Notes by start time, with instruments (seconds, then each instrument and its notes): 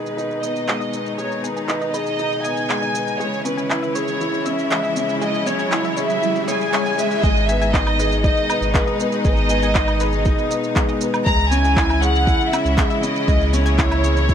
Already playing: sub bass G#1, string section B2 D#3 G#3 D#4, felt piano B3 D#4 G#4, violin section B4, riser
0.06 shaker
0.17 felt piano D#4, shaker
0.31 shaker
0.43 felt piano B3, violin section D#5, synth arpeggio sound D#6, shaker
0.55 sub bass G#1, shaker
0.68 felt piano G#3, synth arpeggio sound G6, clap, shaker
0.80 synth arpeggio sound D#5, shaker
0.93 felt piano B3, shaker
1.06 shaker
1.18 sub bass G#1, felt piano G#3, synth arpeggio sound G#4, violin section C#5, string section A#5, shaker
1.31 shaker
1.43 felt piano B3, violin section B4, synth arpeggio sound G#5, shaker
1.56 synth arpeggio sound G#5, shaker
1.68 felt piano D#4, synth arpeggio sound G#5, clap, shaker
1.82 synth arpeggio sound D#5, shaker
1.94 felt piano G#4, synth arpeggio sound B4, violin section D#5, shaker
2.06 shaker
2.19 felt piano D#4, shaker
2.32 shaker
2.44 felt piano B3, violin section G#5, synth arpeggio sound D#6, shaker
2.57 shaker
2.69 felt piano G#3, synth arpeggio sound G6, clap, shaker
2.82 synth arpeggio sound D#5, shaker
2.94 felt piano B3, shaker
3.08 shaker
3.19 sub bass C#2, string section C#3 E3 G#3 E4, felt piano G#3, synth arpeggio sound G#4, violin section C#5, shaker
3.33 shaker
3.45 felt piano C#4, violin section B4, synth arpeggio sound G#5, shaker
3.57 synth arpeggio sound G#5, shaker
3.70 felt piano E4, synth arpeggio sound G#5, clap, shaker
3.83 synth arpeggio sound E5, shaker
3.95 felt piano G#4, violin section C#5, synth arpeggio sound C#5, shaker
4.08 shaker
4.20 felt piano E4, shaker
4.34 shaker
4.46 felt piano C#4, violin section E5, synth arpeggio sound E6, shaker
4.58 sub bass C#2, shaker
4.71 felt piano G#3, synth arpeggio sound G6, clap, shaker
4.84 synth arpeggio sound E5, shaker
4.96 felt piano C#4, shaker
5.09 shaker
5.21 sub bass C#2, felt piano G#3, synth arpeggio sound G#4, violin section D#5, shaker
5.34 shaker
5.46 felt piano C#4, violin section C#5, synth arpeggio sound G#5, shaker
5.59 synth arpeggio sound G#5, shaker
5.72 felt piano E4, synth arpeggio sound G#5, clap, shaker
5.84 synth arpeggio sound E5, shaker
5.97 felt piano G#4, synth arpeggio sound C#5, violin section E5, shaker
6.10 shaker
6.22 felt piano E4, shaker
6.36 shaker
6.48 felt piano G#4, synth arpeggio sound C#5, violin section G#5, shaker
6.61 shaker
6.73 felt piano C#5, synth arpeggio sound C#5, clap, shaker
6.86 synth arpeggio sound G#5, shaker
6.98 felt piano G#3, violin section E5, shaker
7.11 shaker
7.23 sub bass G#1, string section B2 D#3 G#3 D#4, felt piano G#3, synth arpeggio sound G#4, violin section D#5, kick, shaker
7.36 shaker
7.47 felt piano B3, violin section E5, synth arpeggio sound G#5, shaker
7.62 synth arpeggio sound G#5, shaker
7.73 felt piano D#4, violin section D#5, synth arpeggio sound G#5, kick, clap, shaker
7.86 synth arpeggio sound D#5, low woodblock, shaker
7.99 felt piano G#4, synth arpeggio sound B4, shaker
8.12 shaker
8.23 felt piano D#4, violin section D#5, kick, shaker
8.37 shaker
8.49 felt piano B3, synth arpeggio sound D#6, low woodblock, shaker
8.61 sub bass G#1, shaker
8.74 felt piano G#3, violin section B4, synth arpeggio sound G6, kick, clap, shaker
8.87 synth arpeggio sound D#5, shaker
9.00 felt piano B3, shaker
9.12 shaker
9.24 sub bass G#1, felt piano G#3, synth arpeggio sound G#4, violin section D#5, kick, shaker
9.37 shaker
9.49 felt piano B3, synth arpeggio sound G#5, shaker
9.62 synth arpeggio sound G#5, shaker
9.75 felt piano D#4, synth arpeggio sound G#5, kick, clap, shaker
9.88 synth arpeggio sound D#5, low woodblock, shaker
10.00 felt piano G#4, synth arpeggio sound B4, shaker
10.12 shaker
10.25 felt piano D#4, kick, shaker
10.38 shaker
10.50 felt piano B3, synth arpeggio sound D#6, shaker
10.63 shaker
10.75 felt piano G#3, synth arpeggio sound G6, kick, clap, shaker
10.88 synth arpeggio sound D#5, shaker
11.01 felt piano B3, shaker
11.14 low woodblock, shaker
11.26 sub bass C#2, string section C#3 E3 G#3 E4, felt piano G#3, synth arpeggio sound G#4, violin section A#5, kick, shaker
11.39 shaker
11.51 felt piano C#4, violin section G#5, synth arpeggio sound G#5, shaker
11.65 synth arpeggio sound G#5, shaker
11.76 felt piano E4, synth arpeggio sound G#5, kick, clap, shaker
11.89 synth arpeggio sound E5, low woodblock, shaker
12.02 felt piano G#4, synth arpeggio sound C#5, violin section F#5, shaker
12.15 shaker
12.27 felt piano E4, kick, shaker
12.41 shaker
12.52 felt piano C#4, violin section E5, synth arpeggio sound E6, low woodblock, shaker
12.65 sub bass C#2, shaker
12.77 felt piano G#3, synth arpeggio sound G6, kick, clap, shaker
12.90 synth arpeggio sound E5, shaker
13.03 felt piano C#4, violin section D#5, shaker
13.16 shaker
13.28 sub bass C#2, felt piano G#3, string section A#3, synth arpeggio sound G#4, kick, shaker
13.41 shaker
13.53 felt piano C#4, violin section C#5, synth arpeggio sound G#5, shaker
13.66 synth arpeggio sound G#5, shaker
13.78 felt piano E4, synth arpeggio sound G#5, kick, clap, shaker
13.91 synth arpeggio sound E5, low woodblock, shaker
14.03 felt piano G#4, synth arpeggio sound C#5, shaker
14.17 shaker
14.29 felt piano E4, kick, shaker